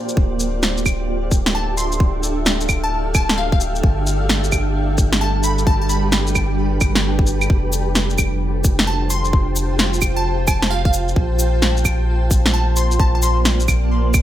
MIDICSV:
0, 0, Header, 1, 6, 480
1, 0, Start_track
1, 0, Key_signature, -1, "minor"
1, 0, Tempo, 458015
1, 179, Time_signature, 4, 2, 24, 8
1, 14903, End_track
2, 0, Start_track
2, 0, Title_t, "Synth pluck"
2, 0, Program_c, 0, 84
2, 1623, Note_on_c, 0, 81, 95
2, 1844, Note_off_c, 0, 81, 0
2, 1859, Note_on_c, 0, 84, 88
2, 2254, Note_off_c, 0, 84, 0
2, 2973, Note_on_c, 0, 81, 89
2, 3222, Note_off_c, 0, 81, 0
2, 3299, Note_on_c, 0, 81, 94
2, 3522, Note_off_c, 0, 81, 0
2, 3539, Note_on_c, 0, 77, 92
2, 3638, Note_off_c, 0, 77, 0
2, 3694, Note_on_c, 0, 77, 77
2, 3749, Note_off_c, 0, 77, 0
2, 5461, Note_on_c, 0, 81, 93
2, 5683, Note_off_c, 0, 81, 0
2, 5699, Note_on_c, 0, 83, 89
2, 5941, Note_on_c, 0, 81, 89
2, 6039, Note_off_c, 0, 81, 0
2, 6093, Note_off_c, 0, 83, 0
2, 6095, Note_on_c, 0, 81, 77
2, 6149, Note_off_c, 0, 81, 0
2, 6177, Note_on_c, 0, 83, 88
2, 6658, Note_off_c, 0, 83, 0
2, 9298, Note_on_c, 0, 81, 92
2, 9522, Note_off_c, 0, 81, 0
2, 9539, Note_on_c, 0, 84, 92
2, 9934, Note_off_c, 0, 84, 0
2, 10653, Note_on_c, 0, 81, 90
2, 10902, Note_off_c, 0, 81, 0
2, 10978, Note_on_c, 0, 81, 90
2, 11201, Note_off_c, 0, 81, 0
2, 11218, Note_on_c, 0, 77, 94
2, 11318, Note_off_c, 0, 77, 0
2, 11374, Note_on_c, 0, 77, 76
2, 11429, Note_off_c, 0, 77, 0
2, 13138, Note_on_c, 0, 81, 94
2, 13361, Note_off_c, 0, 81, 0
2, 13381, Note_on_c, 0, 84, 88
2, 13623, Note_on_c, 0, 81, 89
2, 13720, Note_off_c, 0, 81, 0
2, 13775, Note_off_c, 0, 84, 0
2, 13781, Note_on_c, 0, 81, 74
2, 13832, Note_off_c, 0, 81, 0
2, 13862, Note_on_c, 0, 84, 94
2, 14341, Note_off_c, 0, 84, 0
2, 14903, End_track
3, 0, Start_track
3, 0, Title_t, "Synth texture"
3, 0, Program_c, 1, 99
3, 0, Note_on_c, 1, 67, 81
3, 0, Note_on_c, 1, 79, 85
3, 172, Note_off_c, 1, 67, 0
3, 173, Note_off_c, 1, 79, 0
3, 184, Note_on_c, 1, 67, 89
3, 186, Note_on_c, 1, 79, 89
3, 14903, Note_off_c, 1, 67, 0
3, 14903, Note_off_c, 1, 79, 0
3, 14903, End_track
4, 0, Start_track
4, 0, Title_t, "Ambient pad"
4, 0, Program_c, 2, 92
4, 0, Note_on_c, 2, 58, 76
4, 0, Note_on_c, 2, 65, 73
4, 0, Note_on_c, 2, 72, 79
4, 0, Note_on_c, 2, 74, 80
4, 176, Note_on_c, 2, 62, 82
4, 177, Note_off_c, 2, 58, 0
4, 610, Note_on_c, 2, 76, 90
4, 612, Note_on_c, 2, 69, 80
4, 914, Note_off_c, 2, 72, 0
4, 1614, Note_on_c, 2, 77, 91
4, 1742, Note_off_c, 2, 65, 0
4, 1745, Note_off_c, 2, 74, 0
4, 4025, Note_on_c, 2, 55, 69
4, 4922, Note_off_c, 2, 76, 0
4, 4960, Note_on_c, 2, 71, 88
4, 5582, Note_off_c, 2, 77, 0
4, 7859, Note_off_c, 2, 71, 0
4, 7862, Note_off_c, 2, 55, 0
4, 7862, Note_on_c, 2, 65, 78
4, 8305, Note_on_c, 2, 72, 78
4, 8753, Note_on_c, 2, 79, 92
4, 8920, Note_off_c, 2, 69, 0
4, 9377, Note_off_c, 2, 62, 0
4, 9462, Note_on_c, 2, 81, 73
4, 11693, Note_on_c, 2, 58, 78
4, 12625, Note_off_c, 2, 81, 0
4, 13069, Note_off_c, 2, 79, 0
4, 13090, Note_on_c, 2, 74, 89
4, 14903, Note_off_c, 2, 58, 0
4, 14903, Note_off_c, 2, 65, 0
4, 14903, Note_off_c, 2, 72, 0
4, 14903, Note_off_c, 2, 74, 0
4, 14903, End_track
5, 0, Start_track
5, 0, Title_t, "Sub bass"
5, 0, Program_c, 3, 38
5, 179, Note_on_c, 3, 26, 90
5, 4002, Note_off_c, 3, 26, 0
5, 4020, Note_on_c, 3, 31, 88
5, 7843, Note_off_c, 3, 31, 0
5, 7861, Note_on_c, 3, 29, 89
5, 11683, Note_off_c, 3, 29, 0
5, 11700, Note_on_c, 3, 34, 91
5, 14903, Note_off_c, 3, 34, 0
5, 14903, End_track
6, 0, Start_track
6, 0, Title_t, "Drums"
6, 92, Note_on_c, 9, 82, 29
6, 178, Note_on_c, 9, 36, 115
6, 197, Note_off_c, 9, 82, 0
6, 283, Note_off_c, 9, 36, 0
6, 419, Note_on_c, 9, 82, 54
6, 523, Note_off_c, 9, 82, 0
6, 659, Note_on_c, 9, 38, 103
6, 659, Note_on_c, 9, 82, 33
6, 764, Note_off_c, 9, 38, 0
6, 764, Note_off_c, 9, 82, 0
6, 813, Note_on_c, 9, 82, 33
6, 898, Note_on_c, 9, 36, 62
6, 899, Note_off_c, 9, 82, 0
6, 899, Note_on_c, 9, 75, 70
6, 899, Note_on_c, 9, 82, 58
6, 1003, Note_off_c, 9, 36, 0
6, 1003, Note_off_c, 9, 75, 0
6, 1003, Note_off_c, 9, 82, 0
6, 1378, Note_on_c, 9, 36, 104
6, 1378, Note_on_c, 9, 82, 61
6, 1483, Note_off_c, 9, 36, 0
6, 1483, Note_off_c, 9, 82, 0
6, 1533, Note_on_c, 9, 38, 105
6, 1638, Note_off_c, 9, 38, 0
6, 1861, Note_on_c, 9, 82, 59
6, 1966, Note_off_c, 9, 82, 0
6, 2013, Note_on_c, 9, 82, 32
6, 2098, Note_on_c, 9, 36, 116
6, 2118, Note_off_c, 9, 82, 0
6, 2202, Note_off_c, 9, 36, 0
6, 2340, Note_on_c, 9, 82, 57
6, 2445, Note_off_c, 9, 82, 0
6, 2579, Note_on_c, 9, 38, 111
6, 2579, Note_on_c, 9, 82, 32
6, 2684, Note_off_c, 9, 38, 0
6, 2684, Note_off_c, 9, 82, 0
6, 2732, Note_on_c, 9, 82, 32
6, 2817, Note_off_c, 9, 82, 0
6, 2817, Note_on_c, 9, 75, 67
6, 2817, Note_on_c, 9, 82, 60
6, 2818, Note_on_c, 9, 36, 64
6, 2922, Note_off_c, 9, 75, 0
6, 2922, Note_off_c, 9, 82, 0
6, 2923, Note_off_c, 9, 36, 0
6, 3297, Note_on_c, 9, 75, 68
6, 3297, Note_on_c, 9, 82, 60
6, 3298, Note_on_c, 9, 36, 108
6, 3402, Note_off_c, 9, 75, 0
6, 3402, Note_off_c, 9, 82, 0
6, 3403, Note_off_c, 9, 36, 0
6, 3453, Note_on_c, 9, 38, 109
6, 3557, Note_off_c, 9, 38, 0
6, 3693, Note_on_c, 9, 36, 117
6, 3780, Note_on_c, 9, 82, 59
6, 3798, Note_off_c, 9, 36, 0
6, 3884, Note_off_c, 9, 82, 0
6, 3936, Note_on_c, 9, 82, 32
6, 4019, Note_on_c, 9, 36, 124
6, 4041, Note_off_c, 9, 82, 0
6, 4124, Note_off_c, 9, 36, 0
6, 4262, Note_on_c, 9, 82, 56
6, 4367, Note_off_c, 9, 82, 0
6, 4501, Note_on_c, 9, 38, 109
6, 4501, Note_on_c, 9, 82, 33
6, 4605, Note_off_c, 9, 38, 0
6, 4605, Note_off_c, 9, 82, 0
6, 4654, Note_on_c, 9, 82, 31
6, 4739, Note_off_c, 9, 82, 0
6, 4739, Note_on_c, 9, 36, 65
6, 4739, Note_on_c, 9, 75, 64
6, 4739, Note_on_c, 9, 82, 57
6, 4843, Note_off_c, 9, 75, 0
6, 4843, Note_off_c, 9, 82, 0
6, 4844, Note_off_c, 9, 36, 0
6, 5218, Note_on_c, 9, 82, 59
6, 5220, Note_on_c, 9, 36, 109
6, 5323, Note_off_c, 9, 82, 0
6, 5325, Note_off_c, 9, 36, 0
6, 5372, Note_on_c, 9, 38, 111
6, 5476, Note_off_c, 9, 38, 0
6, 5696, Note_on_c, 9, 82, 57
6, 5801, Note_off_c, 9, 82, 0
6, 5851, Note_on_c, 9, 82, 32
6, 5939, Note_on_c, 9, 36, 121
6, 5956, Note_off_c, 9, 82, 0
6, 6044, Note_off_c, 9, 36, 0
6, 6176, Note_on_c, 9, 82, 52
6, 6281, Note_off_c, 9, 82, 0
6, 6416, Note_on_c, 9, 38, 110
6, 6416, Note_on_c, 9, 82, 30
6, 6521, Note_off_c, 9, 38, 0
6, 6521, Note_off_c, 9, 82, 0
6, 6571, Note_on_c, 9, 82, 30
6, 6658, Note_off_c, 9, 82, 0
6, 6658, Note_on_c, 9, 75, 63
6, 6658, Note_on_c, 9, 82, 54
6, 6659, Note_on_c, 9, 36, 66
6, 6762, Note_off_c, 9, 75, 0
6, 6762, Note_off_c, 9, 82, 0
6, 6764, Note_off_c, 9, 36, 0
6, 7136, Note_on_c, 9, 75, 66
6, 7136, Note_on_c, 9, 82, 57
6, 7139, Note_on_c, 9, 36, 108
6, 7241, Note_off_c, 9, 75, 0
6, 7241, Note_off_c, 9, 82, 0
6, 7243, Note_off_c, 9, 36, 0
6, 7288, Note_on_c, 9, 38, 110
6, 7393, Note_off_c, 9, 38, 0
6, 7534, Note_on_c, 9, 36, 111
6, 7615, Note_on_c, 9, 82, 56
6, 7638, Note_off_c, 9, 36, 0
6, 7719, Note_off_c, 9, 82, 0
6, 7771, Note_on_c, 9, 75, 57
6, 7771, Note_on_c, 9, 82, 31
6, 7859, Note_on_c, 9, 36, 120
6, 7875, Note_off_c, 9, 75, 0
6, 7875, Note_off_c, 9, 82, 0
6, 7964, Note_off_c, 9, 36, 0
6, 8097, Note_on_c, 9, 69, 72
6, 8097, Note_on_c, 9, 82, 51
6, 8202, Note_off_c, 9, 69, 0
6, 8202, Note_off_c, 9, 82, 0
6, 8335, Note_on_c, 9, 38, 107
6, 8335, Note_on_c, 9, 82, 30
6, 8440, Note_off_c, 9, 38, 0
6, 8440, Note_off_c, 9, 82, 0
6, 8490, Note_on_c, 9, 82, 29
6, 8575, Note_off_c, 9, 82, 0
6, 8575, Note_on_c, 9, 69, 66
6, 8575, Note_on_c, 9, 75, 63
6, 8575, Note_on_c, 9, 82, 55
6, 8580, Note_on_c, 9, 36, 62
6, 8680, Note_off_c, 9, 69, 0
6, 8680, Note_off_c, 9, 75, 0
6, 8680, Note_off_c, 9, 82, 0
6, 8685, Note_off_c, 9, 36, 0
6, 9058, Note_on_c, 9, 69, 76
6, 9058, Note_on_c, 9, 82, 55
6, 9060, Note_on_c, 9, 36, 102
6, 9162, Note_off_c, 9, 69, 0
6, 9162, Note_off_c, 9, 82, 0
6, 9165, Note_off_c, 9, 36, 0
6, 9211, Note_on_c, 9, 38, 107
6, 9316, Note_off_c, 9, 38, 0
6, 9539, Note_on_c, 9, 69, 66
6, 9539, Note_on_c, 9, 82, 55
6, 9643, Note_off_c, 9, 69, 0
6, 9643, Note_off_c, 9, 82, 0
6, 9691, Note_on_c, 9, 82, 30
6, 9781, Note_on_c, 9, 36, 114
6, 9796, Note_off_c, 9, 82, 0
6, 9885, Note_off_c, 9, 36, 0
6, 10019, Note_on_c, 9, 69, 75
6, 10019, Note_on_c, 9, 82, 52
6, 10123, Note_off_c, 9, 69, 0
6, 10123, Note_off_c, 9, 82, 0
6, 10261, Note_on_c, 9, 38, 103
6, 10261, Note_on_c, 9, 82, 29
6, 10365, Note_off_c, 9, 38, 0
6, 10365, Note_off_c, 9, 82, 0
6, 10412, Note_on_c, 9, 82, 30
6, 10496, Note_off_c, 9, 82, 0
6, 10496, Note_on_c, 9, 69, 70
6, 10496, Note_on_c, 9, 75, 65
6, 10496, Note_on_c, 9, 82, 56
6, 10500, Note_on_c, 9, 36, 60
6, 10601, Note_off_c, 9, 69, 0
6, 10601, Note_off_c, 9, 75, 0
6, 10601, Note_off_c, 9, 82, 0
6, 10605, Note_off_c, 9, 36, 0
6, 10978, Note_on_c, 9, 69, 81
6, 10978, Note_on_c, 9, 75, 65
6, 10978, Note_on_c, 9, 82, 56
6, 10980, Note_on_c, 9, 36, 100
6, 11083, Note_off_c, 9, 69, 0
6, 11083, Note_off_c, 9, 75, 0
6, 11083, Note_off_c, 9, 82, 0
6, 11085, Note_off_c, 9, 36, 0
6, 11135, Note_on_c, 9, 38, 102
6, 11239, Note_off_c, 9, 38, 0
6, 11374, Note_on_c, 9, 36, 104
6, 11459, Note_on_c, 9, 69, 69
6, 11459, Note_on_c, 9, 82, 53
6, 11478, Note_off_c, 9, 36, 0
6, 11564, Note_off_c, 9, 69, 0
6, 11564, Note_off_c, 9, 82, 0
6, 11616, Note_on_c, 9, 82, 30
6, 11699, Note_on_c, 9, 36, 110
6, 11720, Note_off_c, 9, 82, 0
6, 11804, Note_off_c, 9, 36, 0
6, 11940, Note_on_c, 9, 69, 79
6, 11940, Note_on_c, 9, 82, 53
6, 12044, Note_off_c, 9, 69, 0
6, 12044, Note_off_c, 9, 82, 0
6, 12180, Note_on_c, 9, 38, 101
6, 12180, Note_on_c, 9, 82, 30
6, 12285, Note_off_c, 9, 38, 0
6, 12285, Note_off_c, 9, 82, 0
6, 12335, Note_on_c, 9, 82, 31
6, 12419, Note_on_c, 9, 36, 61
6, 12420, Note_off_c, 9, 82, 0
6, 12420, Note_on_c, 9, 69, 70
6, 12420, Note_on_c, 9, 75, 69
6, 12420, Note_on_c, 9, 82, 56
6, 12524, Note_off_c, 9, 36, 0
6, 12525, Note_off_c, 9, 69, 0
6, 12525, Note_off_c, 9, 75, 0
6, 12525, Note_off_c, 9, 82, 0
6, 12899, Note_on_c, 9, 36, 103
6, 12900, Note_on_c, 9, 69, 80
6, 12900, Note_on_c, 9, 82, 57
6, 13003, Note_off_c, 9, 36, 0
6, 13004, Note_off_c, 9, 69, 0
6, 13004, Note_off_c, 9, 82, 0
6, 13054, Note_on_c, 9, 38, 106
6, 13159, Note_off_c, 9, 38, 0
6, 13378, Note_on_c, 9, 69, 71
6, 13378, Note_on_c, 9, 82, 56
6, 13483, Note_off_c, 9, 69, 0
6, 13483, Note_off_c, 9, 82, 0
6, 13534, Note_on_c, 9, 82, 31
6, 13620, Note_on_c, 9, 36, 111
6, 13639, Note_off_c, 9, 82, 0
6, 13724, Note_off_c, 9, 36, 0
6, 13859, Note_on_c, 9, 69, 75
6, 13859, Note_on_c, 9, 82, 57
6, 13964, Note_off_c, 9, 69, 0
6, 13964, Note_off_c, 9, 82, 0
6, 14098, Note_on_c, 9, 38, 106
6, 14098, Note_on_c, 9, 82, 32
6, 14203, Note_off_c, 9, 38, 0
6, 14203, Note_off_c, 9, 82, 0
6, 14253, Note_on_c, 9, 82, 31
6, 14339, Note_off_c, 9, 82, 0
6, 14339, Note_on_c, 9, 69, 68
6, 14339, Note_on_c, 9, 75, 73
6, 14339, Note_on_c, 9, 82, 60
6, 14340, Note_on_c, 9, 36, 61
6, 14444, Note_off_c, 9, 69, 0
6, 14444, Note_off_c, 9, 75, 0
6, 14444, Note_off_c, 9, 82, 0
6, 14445, Note_off_c, 9, 36, 0
6, 14818, Note_on_c, 9, 69, 81
6, 14818, Note_on_c, 9, 75, 70
6, 14818, Note_on_c, 9, 82, 60
6, 14820, Note_on_c, 9, 36, 100
6, 14903, Note_off_c, 9, 36, 0
6, 14903, Note_off_c, 9, 69, 0
6, 14903, Note_off_c, 9, 75, 0
6, 14903, Note_off_c, 9, 82, 0
6, 14903, End_track
0, 0, End_of_file